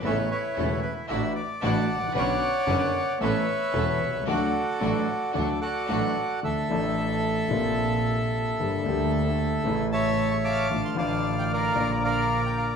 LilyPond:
<<
  \new Staff \with { instrumentName = "Bandoneon" } { \time 4/4 \key d \major \tempo 4 = 113 << { e''8 cis''4 b'8 e''8 d''8 a''8. r16 | fis''2 e''2 | d''2 fis''8 <d'' fis''>4. | \key d \minor e''1~ |
e''2~ e''8 a''8. cis'''16 d'''8~ | d'''16 c'''16 a''8. g''16 f''8. d''16 f''8. g''16 f''16 r16 | } \\ { <b' cis''>8 e'4. r4 <d'' fis''>4 | <cis'' d''>2 <b' cis''>2 | <fis' a'>2 <a' d''>8 <fis' a'>4. | a'1~ |
a'2~ a'8 <cis'' e''>4 <f'' a''>8~ | <f'' a''>8 <d'' f''>4 <bes' d''>4 <bes' d''>4. | } >> }
  \new Staff \with { instrumentName = "String section" } { \time 4/4 \key d \major <b cis' a'>8 r8 <b cis' a'>8 r8 <d' e' fis'>8 r8 <d' e' fis'>8 r8 | <cis' d' b'>8 r8 <cis' d' b'>8 r8 <b cis' a'>8 r8 <b cis' a'>8 r8 | <a d' fis'>8 r8 <a d' fis'>8 r8 <a d' fis'>8 r8 <a d' fis'>8 r8 | \key d \minor r1 |
r1 | r1 | }
  \new Staff \with { instrumentName = "Grand piano" } { \clef bass \time 4/4 \key d \major <a,, a, cis a b e'>8 r8 <e,, e, cis a b e'>8 r8 <a,, a, e a d' fis'>8 r8 <a,, a, e a d' fis'>8 r32 gis,,32 a,,32 bes,,32 | <b,, b, d b cis' fis'>8 r8 <fis,, fis, d b cis' fis'>8 r8 <a,, a, e b cis' a'>8 r8 <e,, e, e b cis' a'>8 r32 b,,32 c,32 cis,32 | <d, d fis a d' a'>8 r8 <a,, a, fis a d' a'>8 r8 <d, d fis a d' a'>8 r8 <a,, a, fis a d' a'>8 r8 | \key d \minor <d, d f a d' a'>8 <a,, a, f a d' a'>4. <bes,, bes, c f bes f'>2 |
<g,, g, d g bes g'>8 <d, d g bes g'>4. <a,, a, cis e a e'>2 | <a,, a, d f a f'>8 <a,, a, d f a f'>4. <bes,, bes, d f bes f'>2 | }
  \new Staff \with { instrumentName = "Double bass" } { \clef bass \time 4/4 \key d \major a,,8 r8 e,,8 r8 a,,8 r8 a,,8 a,,8 | b,,8 r8 fis,,8 r8 a,,8 r8 e,,8 c,8 | d,8 r8 a,,8 r8 d,8 r8 a,,8 r8 | \key d \minor d,8 a,,4. bes,,2 |
g,,8 d,4. a,,2 | a,,8 a,,4. bes,,2 | }
>>